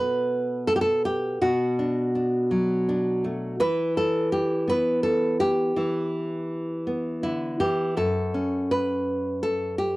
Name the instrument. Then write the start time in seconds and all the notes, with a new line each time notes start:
nylon-string guitar
Already playing: B2 A3 B4
0.67 A4
0.76 G4
0.81 A4
1.05 G4
1.42 B2 F#4
1.79 D4
2.15 D4
2.51 F#3
2.89 D4
3.24 A3
3.60 E3 B4
3.97 A4
4.32 G4
4.68 B3 B4
5.03 A4
5.40 G4
5.76 E3 E4
6.87 B3
7.23 D3 E4
7.60 E3 G4
7.97 F#2 A4
8.34 C#4
8.71 B4
9.43 A4
9.78 G4